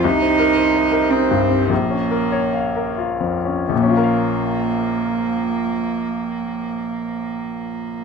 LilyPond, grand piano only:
\new Staff \with { instrumentName = "Grand piano" } { \time 3/4 \key bes \minor \tempo 4 = 83 \tuplet 3/2 { c,8 c'8 bes'8 c''8 ees''8 bes'8 ees'8 g,8 c'8 } | \tuplet 3/2 { bes,,8 des'8 bes'8 des''8 f''8 bes'8 f'8 f,8 des'8 } | <bes,, bes, des' f' bes' f''>2.~ | <bes,, bes, des' f' bes' f''>2. | }